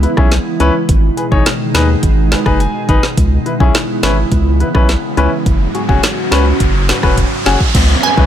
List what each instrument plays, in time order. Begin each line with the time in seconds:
Already playing: ambient pad C#3 E3 G#3 B3 E4
0.03 grand piano E4 B4, closed hi-hat
0.17 sub bass B1, grand piano C#4 E4 G#4, kick, cross-stick
0.32 snare, closed hi-hat
0.60 sub bass C#2, grand piano C#4 E4 B4, closed hi-hat
0.89 sub bass G#1, ambient pad B2 D#3 D#4 G#4, kick, closed hi-hat
1.17 grand piano G#4 B4, closed hi-hat
1.31 sub bass G#1, grand piano D#4 G#4 C#5, kick
1.46 cross-stick, snare, closed hi-hat
1.74 sub bass D#2, grand piano D#4 G#4 B4, cross-stick, snare, closed hi-hat
2.03 sub bass G#1, kick, closed hi-hat
2.31 grand piano G#4 B4, cross-stick, snare, closed hi-hat
2.46 sub bass F#1, grand piano D#4 G#4 B4, kick, cross-stick
2.60 grand piano G#5, closed hi-hat
2.89 sub bass G#1, grand piano D#4 G#4 B4, kick, closed hi-hat
3.03 snare
3.17 sub bass C#2, ambient pad C#3 E3 B3 E4, kick, closed hi-hat, riser
3.46 grand piano E4 B4, closed hi-hat
3.60 sub bass B1, grand piano C#4 E4 G#4, kick
3.75 cross-stick, snare, closed hi-hat
4.03 sub bass G#1, grand piano C#4 E4 B4, cross-stick, snare, closed hi-hat
4.32 sub bass C#2, kick, closed hi-hat
4.60 grand piano E4 B4, closed hi-hat
4.75 sub bass B1, grand piano C#4 E4 B4, kick, cross-stick
4.89 snare, closed hi-hat
5.17 sub bass C#2, grand piano C#4 E4 B4, closed hi-hat
5.46 sub bass F#1, ambient pad G#2 F#3 C#4 F#4, kick, closed hi-hat
5.75 grand piano F#4 G#4, closed hi-hat
5.89 sub bass F#1, grand piano C#4 F#4 G#4, kick
6.03 cross-stick, snare, closed hi-hat
6.31 sub bass C#2, grand piano C#4 F#4 B4, cross-stick, snare, closed hi-hat
6.60 sub bass F#1, kick, closed hi-hat
6.89 grand piano F#4 B4, cross-stick, snare, closed hi-hat
7.03 sub bass E1, grand piano C#4 F#4 B4, kick, cross-stick
7.17 kick, closed hi-hat
7.46 sub bass F#1, grand piano C#4 F#4 G#4, snare, closed hi-hat
7.60 kick
7.75 sub bass C#2, kick, closed hi-hat, crash, downlifter
8.03 grand piano G#4 B4, synth pluck G#5, closed hi-hat
8.17 sub bass B1, grand piano C#4 E4 G#4 B4, kick